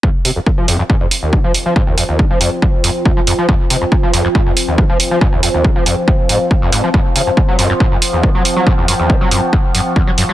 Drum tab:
HH |-o-o-o-o|-o-o-o-o|-o-o-o-o|-o-o-o-o|
BD |o-o-o-o-|o-o-o-o-|o-o-o-o-|o-o-o-o-|

HH |-o-o-o-o|-o-o-o-o|
BD |o-o-o-o-|o-o-o-o-|